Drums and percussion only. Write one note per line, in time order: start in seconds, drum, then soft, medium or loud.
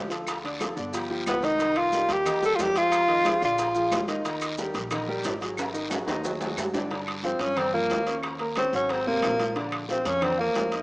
0.10 high bongo soft
0.10 high conga soft
0.10 high timbale medium
0.10 short guiro medium
0.10 maracas soft
0.27 high bongo medium
0.27 high conga soft
0.27 high timbale medium
0.27 long guiro medium
0.27 claves medium
0.27 maracas medium
0.44 high bongo soft
0.44 high conga soft
0.44 high timbale medium
0.60 high bongo medium
0.60 high conga medium
0.60 high timbale medium
0.60 low timbale medium
0.60 short guiro medium
0.60 claves medium
0.60 maracas medium
0.77 high bongo soft
0.77 short guiro medium
0.77 maracas soft
0.93 high bongo medium
0.93 high conga soft
0.93 high timbale medium
0.93 long guiro medium
0.93 maracas medium
1.10 high conga soft
1.26 high bongo soft
1.26 low bongo medium
1.26 high conga medium
1.26 high timbale medium
1.26 low timbale medium
1.26 short guiro medium
1.26 claves medium
1.26 maracas medium
1.43 high bongo soft
1.43 high conga medium
1.43 high timbale medium
1.43 short guiro medium
1.43 maracas soft
1.59 high bongo medium
1.59 high conga soft
1.59 high timbale medium
1.59 long guiro medium
1.59 maracas medium
1.76 high bongo soft
1.76 high conga soft
1.76 high timbale medium
1.76 claves medium
1.92 high bongo medium
1.92 high conga medium
1.92 low timbale medium
1.92 short guiro medium
1.92 maracas medium
2.09 high bongo soft
2.09 high conga medium
2.09 high timbale medium
2.09 short guiro medium
2.09 maracas soft
2.25 high bongo medium
2.25 high conga soft
2.25 low conga medium
2.25 high timbale medium
2.25 long guiro medium
2.25 claves medium
2.25 maracas medium
2.42 high conga soft
2.42 maracas medium
2.59 high bongo soft
2.59 low bongo medium
2.59 high conga medium
2.59 high timbale medium
2.59 low timbale medium
2.59 short guiro medium
2.59 maracas medium
2.75 high bongo soft
2.75 high conga soft
2.75 high timbale medium
2.75 short guiro medium
2.75 maracas soft
2.91 high bongo medium
2.91 high conga soft
2.91 high timbale medium
2.91 long guiro medium
2.91 claves medium
2.91 maracas medium
3.08 high bongo soft
3.08 high conga soft
3.08 high timbale medium
3.25 high bongo medium
3.25 high conga loud
3.25 high timbale medium
3.25 low timbale medium
3.25 short guiro medium
3.25 claves medium
3.25 maracas medium
3.42 high bongo soft
3.42 short guiro medium
3.42 maracas soft
3.58 high bongo medium
3.58 high conga soft
3.58 high timbale medium
3.58 long guiro medium
3.58 maracas medium
3.75 high conga soft
3.75 maracas medium
3.91 high bongo soft
3.91 low bongo medium
3.91 high conga medium
3.91 high timbale loud
3.91 low timbale medium
3.91 short guiro medium
3.91 claves medium
3.91 maracas medium
4.08 high bongo soft
4.08 high conga medium
4.08 high timbale medium
4.08 short guiro medium
4.08 maracas soft
4.25 high bongo medium
4.25 high timbale medium
4.25 long guiro medium
4.25 maracas medium
4.41 high bongo soft
4.41 high conga soft
4.41 high timbale loud
4.41 claves medium
4.41 maracas medium
4.58 high bongo medium
4.58 high conga medium
4.58 low timbale medium
4.58 short guiro medium
4.58 maracas medium
4.74 high bongo soft
4.74 high conga medium
4.74 high timbale medium
4.74 short guiro medium
4.74 maracas soft
4.91 high bongo medium
4.91 high conga soft
4.91 low conga medium
4.91 high timbale medium
4.91 long guiro medium
4.91 claves medium
4.91 maracas medium
5.09 high conga soft
5.24 high bongo soft
5.24 low bongo medium
5.24 high conga medium
5.24 high timbale medium
5.24 low timbale medium
5.24 short guiro medium
5.24 maracas medium
5.41 high bongo soft
5.41 high conga soft
5.41 high timbale medium
5.41 short guiro medium
5.41 maracas soft
5.57 high bongo medium
5.57 high conga soft
5.57 high timbale medium
5.57 long guiro medium
5.57 claves medium
5.57 maracas medium
5.74 high bongo soft
5.74 high conga soft
5.74 maracas medium
5.91 high bongo medium
5.91 high conga medium
5.91 high timbale medium
5.91 short guiro medium
5.91 claves medium
5.91 maracas medium
6.08 high bongo loud
6.08 low timbale medium
6.08 short guiro medium
6.08 maracas soft
6.24 high conga soft
6.24 low timbale medium
6.24 long guiro medium
6.24 maracas medium
6.41 low bongo medium
6.41 high conga soft
6.41 low timbale medium
6.41 maracas medium
6.57 high conga medium
6.57 low timbale medium
6.57 short guiro medium
6.57 claves medium
6.57 maracas medium
6.74 low bongo medium
6.74 high conga medium
6.74 low timbale medium
6.74 short guiro medium
6.74 maracas soft
6.90 high bongo medium
6.90 high conga soft
6.90 high timbale medium
6.90 long guiro medium
7.07 high bongo soft
7.07 high conga soft
7.07 high timbale medium
7.07 claves medium
7.23 high bongo medium
7.23 high conga medium
7.23 low timbale medium
7.23 short guiro medium
7.39 high bongo soft
7.39 high conga medium
7.39 high timbale medium
7.39 short guiro medium
7.56 high bongo medium
7.56 high conga soft
7.56 low conga medium
7.56 high timbale medium
7.56 long guiro medium
7.56 claves medium
7.73 high conga soft
7.73 low conga medium
7.90 high bongo soft
7.90 low bongo medium
7.90 high conga medium
7.90 high timbale medium
7.90 low timbale medium
7.90 short guiro medium
8.06 high bongo soft
8.06 high conga soft
8.06 high timbale medium
8.06 short guiro medium
8.23 high bongo medium
8.23 high conga soft
8.23 high timbale medium
8.23 long guiro medium
8.23 claves medium
8.39 high bongo soft
8.39 high conga soft
8.39 high timbale medium
8.55 high bongo medium
8.55 high conga medium
8.55 high timbale medium
8.55 low timbale medium
8.55 short guiro medium
8.55 claves medium
8.73 high bongo soft
8.73 short guiro medium
8.89 high bongo medium
8.89 high conga soft
8.89 high timbale medium
8.89 long guiro medium
9.06 high conga soft
9.22 high bongo soft
9.22 low bongo medium
9.22 high conga medium
9.22 high timbale medium
9.22 low timbale medium
9.22 short guiro medium
9.22 claves medium
9.39 high bongo soft
9.39 high conga medium
9.39 high timbale medium
9.39 short guiro medium
9.56 high bongo medium
9.56 high conga soft
9.56 high timbale medium
9.56 long guiro medium
9.72 high bongo soft
9.72 high conga soft
9.72 high timbale medium
9.72 claves medium
9.89 high bongo medium
9.89 high conga medium
9.89 low timbale medium
9.89 short guiro medium
10.05 high bongo soft
10.05 high conga medium
10.05 high timbale medium
10.05 short guiro medium
10.21 high bongo medium
10.21 high conga soft
10.21 low conga medium
10.21 high timbale medium
10.21 long guiro medium
10.21 claves medium
10.38 high conga soft
10.55 high bongo soft
10.55 low bongo medium
10.55 high conga medium
10.55 high timbale medium
10.55 low timbale medium
10.55 short guiro medium
10.72 high bongo soft
10.72 high conga soft
10.72 high timbale medium
10.72 short guiro medium